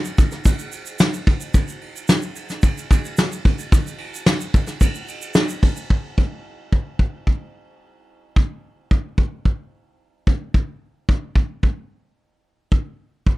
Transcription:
0.05 shaker
0.18 kick, ride, shaker
0.32 snare, ride, shaker
0.45 kick, ride, shaker
0.59 ride, shaker
0.72 ride, shaker
0.86 ride, shaker
0.99 snare, ride, shaker
1.13 ride, shaker
1.27 kick, ride
1.40 ride, shaker
1.54 kick, ride, shaker
1.68 shaker
1.81 ride
1.95 ride, shaker
2.08 snare, ride, shaker
2.22 shaker
2.36 ride, shaker
2.49 snare, ride, shaker
2.62 kick, ride, shaker
2.77 ride, shaker
2.91 kick, ride, shaker
3.05 ride, shaker
3.17 snare, ride, shaker
3.32 ride, shaker
3.45 kick, ride
3.58 ride, shaker
3.72 kick, ride, shaker
3.86 ride, shaker
3.98 ride
4.13 ride, shaker
4.26 snare, ride, shaker
4.40 ride, shaker
4.54 kick, ride, shaker
4.67 snare, ride, shaker
4.81 kick, ride, shaker
4.94 ride, shaker
5.08 ride, shaker
5.21 ride, shaker
5.34 snare, ride, shaker
5.49 ride, shaker
5.62 kick, open hi-hat, ride
5.75 ride, shaker
5.90 kick
6.18 kick
6.72 kick
6.99 kick
7.27 kick
8.36 kick
8.91 kick
9.18 kick
9.45 kick
10.27 kick
10.54 kick
11.09 kick
11.36 kick
11.63 kick
12.72 kick
13.27 kick

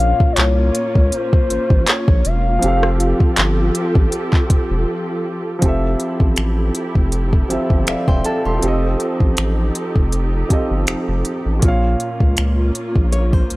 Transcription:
Already playing: A#1 A#2 A#3 C#4 F4 F5
0.00 closed hi-hat
0.20 kick
0.33 C5
0.37 C2 C#5, clap, closed hi-hat
0.75 closed hi-hat
0.95 C#2, kick
1.12 C5, closed hi-hat
1.33 kick
1.50 A1, closed hi-hat
1.70 A1, kick
1.87 C#5, clap, closed hi-hat
2.08 A#1, kick
2.25 E1 F5, closed hi-hat
2.59 F3 C4 F4 G4 A4, closed hi-hat
2.63 F1 G4 A4
2.68 F5
2.83 cross-stick
3.00 closed hi-hat
3.20 kick
3.37 G1, clap, closed hi-hat
3.75 closed hi-hat
3.95 A1, kick
4.12 closed hi-hat
4.33 kick, clap
4.50 E1, kick, closed hi-hat
4.71 E1
5.59 F1 F3 C4 E4 G4 A4, kick, closed hi-hat
5.63 G4 A4
5.68 E5
6.00 closed hi-hat
6.20 A1, kick
6.36 A1, finger snap, closed hi-hat
6.75 closed hi-hat
6.95 F1, kick
7.12 closed hi-hat
7.33 kick
7.49 G1 F3 C4 G4 A4, closed hi-hat
7.53 E5
7.70 G1, kick
7.87 E1 D5 E5 F5, finger snap, closed hi-hat
8.08 E1 C5 E5 G5, kick
8.25 A4 F5 A5, closed hi-hat
8.45 E1 G4 A5 C6
8.59 F3 C4 D#4 G4, closed hi-hat
8.63 F1 G4 A4
8.68 D#5
9.00 closed hi-hat
9.20 A1, kick
9.37 A1, finger snap, closed hi-hat
9.75 closed hi-hat
9.96 F1, kick
10.12 closed hi-hat
10.49 G1 F3 C4 G4 A4, kick, closed hi-hat
10.53 D#5
10.71 G1
10.87 F1, finger snap, closed hi-hat
11.08 F1
11.25 closed hi-hat
11.46 A1
11.59 A#1 A#2 A#3 C#4 F4, kick, closed hi-hat
11.64 F4 C#5
11.68 F5
12.00 closed hi-hat
12.20 C#2, kick
12.37 C#2, finger snap, closed hi-hat
12.75 closed hi-hat
12.95 A#1, kick
13.12 C#5, closed hi-hat
13.33 C5, kick
13.50 C2, closed hi-hat

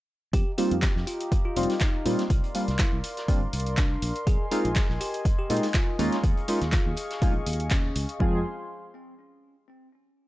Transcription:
0.33 F2 G4 D#5 F5 A#5, kick, closed hi-hat
0.58 G3 A#3 C4 D#4 F4 G4, closed hi-hat, open hi-hat
0.71 F2, closed hi-hat
0.82 kick, snare, clap, closed hi-hat
0.96 F2, snare
1.07 F4, closed hi-hat, open hi-hat
1.21 closed hi-hat
1.32 kick, closed hi-hat
1.45 F4
1.56 F1 G3 A#3 C4 D#4 F4, closed hi-hat, open hi-hat
1.63 closed hi-hat
1.70 snare, open hi-hat
1.80 D#4, kick, snare, clap, closed hi-hat
2.05 A#2 G3 A#3 C4 D#4 F4, closed hi-hat, open hi-hat
2.19 snare, closed hi-hat
2.30 C2 A#4 D5 C6, kick, closed hi-hat
2.44 closed hi-hat
2.54 G3 A#3 C4 D4 F4, closed hi-hat, open hi-hat
2.68 C2, snare, closed hi-hat
2.79 E4, kick, snare, clap, closed hi-hat
2.93 C2
3.04 closed hi-hat, open hi-hat
3.17 snare, closed hi-hat
3.28 G1 G3 A#3 C4 D4 F4, kick, closed hi-hat, open hi-hat
3.53 C2, closed hi-hat, open hi-hat
3.60 closed hi-hat
3.66 closed hi-hat
3.77 D4, kick, snare, clap, closed hi-hat
4.02 A#1, closed hi-hat, open hi-hat
4.16 closed hi-hat
4.27 A#1 G#4 D#5 G#5, kick, closed hi-hat
4.51 G#3 A#3 C4 D#4 F4 G#4, closed hi-hat, open hi-hat
4.65 A#1, closed hi-hat
4.76 kick, snare, clap, closed hi-hat
4.89 A#1, snare
5.00 G4, closed hi-hat, open hi-hat
5.14 closed hi-hat
5.25 kick, closed hi-hat
5.39 G4
5.50 A#2 G#3 A#3 C4 D#4 F4, closed hi-hat, open hi-hat
5.57 closed hi-hat
5.62 snare, open hi-hat
5.74 F4, kick, snare, clap, closed hi-hat
5.99 D#2 G#3 A#3 C#4 D#4 F4 G#4 F5 C#6, closed hi-hat, open hi-hat
6.12 snare, closed hi-hat
6.24 D#2, kick, closed hi-hat
6.37 closed hi-hat
6.48 G#3 A#3 C#4 D#4 F4, closed hi-hat, open hi-hat
6.61 D#2, snare, closed hi-hat
6.72 F4, kick, snare, clap, closed hi-hat
6.86 D#2
6.96 closed hi-hat, open hi-hat
7.11 snare, closed hi-hat
7.21 A#1 G#3 A#3 C#4 D#4 F4, kick, closed hi-hat, open hi-hat
7.46 D#2, closed hi-hat, open hi-hat
7.53 closed hi-hat
7.60 closed hi-hat
7.70 C#4, kick, snare, clap, closed hi-hat
7.96 C#2, closed hi-hat, open hi-hat
8.09 closed hi-hat
8.20 F2 F3 G#3 C4 F4 G#4 C5 F5 C6, kick

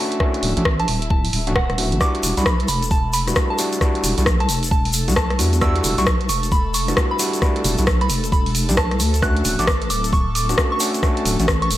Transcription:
Already playing: A3 C#4 D4 E4 F#4 E5 A5
0.12 closed hi-hat
0.20 A3 C#4 D4 F#4, kick, cross-stick
0.34 closed hi-hat
0.43 D1, open hi-hat
0.57 A1 A3 C#4 D4 F#4, closed hi-hat
0.65 kick, cross-stick
0.80 A5, cross-stick, closed hi-hat
0.88 D1, open hi-hat
1.02 closed hi-hat
1.10 A5, kick
1.25 open hi-hat
1.33 D1, open hi-hat
1.47 A3 C#4 D4 F#4, closed hi-hat
1.56 F#5, kick, cross-stick
1.70 D1, cross-stick, closed hi-hat
1.78 A3 C#4 D4 F#4, open hi-hat
1.92 A1, closed hi-hat
2.01 G3 A3 D4 E4 F#4 A4 D6, kick, cross-stick, shaker
2.15 closed hi-hat
2.23 E1, open hi-hat, shaker
2.37 B1 G3 D4 E4 F#4 B5, closed hi-hat, shaker
2.46 kick, cross-stick, shaker
2.60 closed hi-hat
2.68 E1 B5, open hi-hat, shaker
2.82 closed hi-hat, shaker
2.91 A5, kick, shaker
3.13 B5, open hi-hat, shaker
3.28 G3 D4 E4 F#4, cross-stick, closed hi-hat, shaker
3.35 kick, cross-stick, shaker
3.50 A5
3.58 G3 D4 E4 F#4, open hi-hat, shaker
3.73 closed hi-hat, shaker
3.81 G3 D4 E4 F#4, kick, cross-stick, shaker
3.95 closed hi-hat
4.04 E1, open hi-hat, shaker
4.18 B1 G3 D4 E4 F#4, closed hi-hat, shaker
4.26 kick, cross-stick, shaker
4.40 A5, cross-stick, closed hi-hat
4.49 E1, open hi-hat, shaker
4.63 closed hi-hat, shaker
4.71 A5, kick
4.85 open hi-hat
4.93 open hi-hat, shaker
5.08 B1 G3 D4 E4 F#4, closed hi-hat, shaker
5.16 A5, kick, cross-stick
5.30 cross-stick, closed hi-hat
5.39 E2 G3 D4 E4 F#4, open hi-hat, shaker
5.53 closed hi-hat, shaker
5.61 G3 D4 E4 F#4 E6, kick, cross-stick, shaker
5.76 closed hi-hat
5.84 E1, open hi-hat, shaker
5.98 B1 G3 D4 E4 F#4 C#6, closed hi-hat, shaker
6.06 kick, cross-stick, shaker
6.21 closed hi-hat
6.29 E1 C#6, open hi-hat, shaker
6.43 closed hi-hat, shaker
6.52 B5, kick, shaker
6.74 C#6, open hi-hat, shaker
6.88 G3 D4 E4 F#4, cross-stick, closed hi-hat, shaker
6.97 kick, cross-stick, shaker
7.11 B5
7.19 G3 D4 E4 F#4, open hi-hat, shaker
7.33 closed hi-hat, shaker
7.42 G3 D4 E4 F#4, kick, cross-stick, shaker
7.56 closed hi-hat
7.64 E1, open hi-hat, shaker
7.78 B1 G3 D4 E4 F#4, closed hi-hat, shaker
7.87 kick, cross-stick, shaker
8.01 B5, cross-stick, closed hi-hat
8.09 E1, open hi-hat, shaker
8.24 closed hi-hat, shaker
8.32 B5, kick, shaker
8.46 open hi-hat
8.55 open hi-hat, shaker
8.69 B1 G3 D4 E4 G4, closed hi-hat, shaker
8.77 A5, kick, cross-stick
8.91 cross-stick, closed hi-hat
9.00 D2, open hi-hat, shaker
9.14 closed hi-hat, shaker
9.22 A3 C#4 D4 F#4 F#6, kick, cross-stick, shaker
9.37 closed hi-hat
9.45 D1, open hi-hat, shaker
9.59 A1 A3 C#4 D4 F#4 D6, closed hi-hat, shaker
9.67 kick, cross-stick, shaker
9.82 closed hi-hat
9.90 D1 D6, open hi-hat, shaker
10.04 closed hi-hat, shaker
10.13 C#6, kick, shaker
10.35 D6, open hi-hat, shaker
10.49 A3 C#4 D4 F#4, cross-stick, closed hi-hat, shaker
10.58 kick, cross-stick, shaker
10.72 C#6
10.80 A3 C#4 D4 F#4, open hi-hat, shaker
10.94 closed hi-hat, shaker
11.03 A3 C#4 D4 F#4, kick, cross-stick, shaker
11.17 closed hi-hat
11.25 D1, open hi-hat, shaker
11.39 A1 A3 C#4 D4 F#4, closed hi-hat, shaker
11.48 kick, cross-stick, shaker
11.62 C#6, cross-stick, closed hi-hat
11.71 D1, open hi-hat, shaker

